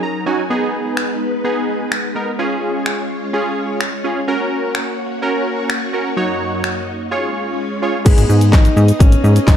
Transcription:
0.00 0.46 F#3 medium
0.00 0.46 C#4 medium
0.00 2.35 D#4 medium
0.00 0.48 A#4 medium
0.00 0.25 A#5 medium
0.26 0.42 F#3 medium
0.26 0.42 C#4 medium
0.26 0.42 D#4 medium
0.26 0.42 F#4 medium
0.26 0.48 G#5 medium
0.50 4.24 G#3 medium
0.50 1.14 B3 medium
0.50 2.37 B3 medium
0.50 1.14 D#4 medium
0.50 1.14 G#4 medium
0.50 2.37 B4 medium
0.97 finger snap loud
1.44 1.92 B3 medium
1.44 1.92 D#4 medium
1.44 1.92 G#4 medium
1.92 finger snap loud
2.15 2.31 B3 medium
2.15 2.31 D#4 medium
2.15 2.31 A#4 medium
2.39 3.03 C#4 medium
2.39 6.13 C#4 medium
2.39 3.03 F4 medium
2.39 4.26 F4 medium
2.39 3.03 G#4 medium
2.39 4.26 C#5 medium
2.86 finger snap loud
3.33 3.81 C#4 medium
3.33 3.81 F4 medium
3.33 3.81 G#4 loud
3.81 finger snap loud
4.04 4.20 C#4 medium
4.04 4.20 F4 medium
4.04 4.20 G#4 medium
4.28 7.08 A#3 medium
4.28 4.92 C#4 medium
4.28 7.08 F#4 medium
4.28 4.92 F#4 medium
4.28 4.92 A#4 medium
4.28 7.08 C#5 medium
4.75 finger snap loud
5.22 5.70 C#4 medium
5.22 5.70 F#4 medium
5.22 5.70 A#4 medium
5.70 finger snap loud
5.93 6.09 C#4 medium
5.93 6.09 F#4 medium
5.93 6.09 A#4 medium
6.17 7.10 F#2 medium
6.17 6.81 F#3 medium
6.17 6.81 D#4 medium
6.17 7.10 D#4 medium
6.17 6.81 F#4 medium
6.17 6.81 C#5 loud
6.64 finger snap loud
7.11 8.05 G#3 medium
7.11 8.05 C#4 medium
7.11 7.59 F4 medium
7.11 8.05 F4 medium
7.11 7.59 G#4 medium
7.11 8.05 C#5 medium
7.11 7.59 C#5 medium
7.82 7.98 F4 medium
7.82 7.98 G#4 medium
7.82 7.98 C#5 medium
8.05 8.14 G#1 loud
8.05 8.54 G#3 medium
8.05 8.70 B3 medium
8.05 9.57 B3 medium
8.05 8.70 D#4 medium
8.05 9.57 D#4 medium
8.05 9.57 G#4 medium
8.05 8.70 G#4 medium
8.05 9.57 D#5 medium
8.05 kick loud
8.05 closed hi-hat medium
8.05 crash loud
8.05 shaker medium
8.18 8.25 G#1 loud
8.18 closed hi-hat medium
8.18 shaker medium
8.29 8.55 G#2 medium
8.29 shaker medium
8.41 closed hi-hat medium
8.41 shaker medium
8.52 8.68 G#1 loud
8.52 9.01 D#4 loud
8.52 kick loud
8.52 snare medium
8.52 clap loud
8.52 closed hi-hat medium
8.52 shaker medium
8.65 closed hi-hat medium
8.65 shaker soft
8.77 8.92 G#2 loud
8.77 shaker medium
8.88 closed hi-hat medium
8.88 shaker medium
8.99 9.16 G#1 loud
8.99 9.48 C#4 loud
8.99 kick loud
8.99 closed hi-hat medium
8.99 shaker medium
9.12 closed hi-hat medium
9.12 shaker medium
9.24 9.39 G#2 loud
9.24 shaker medium
9.36 closed hi-hat medium
9.36 shaker medium
9.47 9.57 G#1 loud
9.47 9.57 D#4 loud
9.47 kick loud
9.47 snare medium
9.47 clap loud
9.47 closed hi-hat medium
9.47 shaker medium

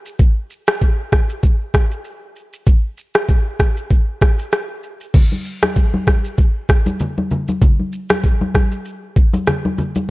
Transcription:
0.06 shaker medium
0.19 kick loud
0.19 shaker medium
0.50 shaker medium
0.67 cross-stick loud
0.67 shaker medium
0.82 kick medium
0.82 shaker medium
1.12 kick medium
1.12 cross-stick medium
1.12 shaker soft
1.30 shaker medium
1.43 kick medium
1.43 shaker medium
1.74 kick loud
1.74 cross-stick loud
1.74 shaker soft
1.91 shaker medium
2.05 shaker medium
2.36 shaker soft
2.53 shaker medium
2.67 kick loud
2.67 shaker medium
2.98 shaker medium
3.14 cross-stick loud
3.14 shaker medium
3.29 kick medium
3.29 shaker medium
3.60 kick medium
3.60 cross-stick medium
3.60 shaker soft
3.77 shaker medium
3.90 kick medium
3.90 shaker medium
4.21 kick loud
4.21 cross-stick medium
4.21 shaker soft
4.39 shaker medium
4.52 cross-stick medium
4.52 shaker medium
4.83 shaker soft
5.01 shaker medium
5.14 kick loud
5.14 crash loud
5.14 low conga medium
5.14 shaker medium
5.32 high conga soft
5.45 shaker medium
5.62 cross-stick loud
5.62 high conga medium
5.62 shaker medium
5.76 kick medium
5.76 shaker medium
5.94 high conga medium
6.07 kick medium
6.07 cross-stick medium
6.07 high conga medium
6.07 shaker soft
6.25 shaker medium
6.38 kick medium
6.38 shaker medium
6.69 kick loud
6.69 cross-stick medium
6.69 shaker medium
6.86 high conga medium
6.86 shaker medium
6.99 low conga medium
6.99 shaker medium
7.18 high conga medium
7.31 low conga medium
7.31 shaker soft
7.48 high conga medium
7.48 shaker medium
7.62 kick loud
7.62 low conga medium
7.62 shaker medium
7.79 high conga soft
7.93 shaker medium
8.09 cross-stick loud
8.09 high conga medium
8.09 shaker medium
8.24 kick medium
8.24 shaker medium
8.41 high conga medium
8.55 kick medium
8.55 cross-stick medium
8.55 high conga medium
8.55 shaker soft
8.72 shaker medium
8.85 shaker medium
9.16 kick loud
9.16 shaker medium
9.33 high conga medium
9.33 shaker medium
9.47 cross-stick medium
9.47 low conga medium
9.47 shaker medium
9.65 high conga medium
9.78 low conga medium
9.78 shaker medium
9.95 high conga medium
9.95 shaker medium

